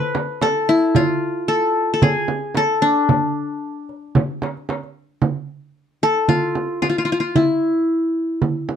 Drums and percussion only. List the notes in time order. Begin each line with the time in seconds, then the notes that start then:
0.15 darbuka tek, frame drum
0.41 darbuka tek, frame drum
0.69 darbuka ka
0.95 frame drum, darbuka dum
2.02 darbuka dum, frame drum
2.28 frame drum
2.55 darbuka tek, frame drum
2.83 darbuka ka
3.09 frame drum, darbuka dum
3.89 darbuka ka
4.15 frame drum, darbuka dum
4.42 darbuka tek, frame drum
4.57 darbuka ka
4.69 darbuka tek, frame drum
4.83 darbuka ka
5.22 frame drum
6.28 frame drum
6.55 frame drum
6.82 frame drum
7.35 frame drum
8.42 frame drum
8.69 frame drum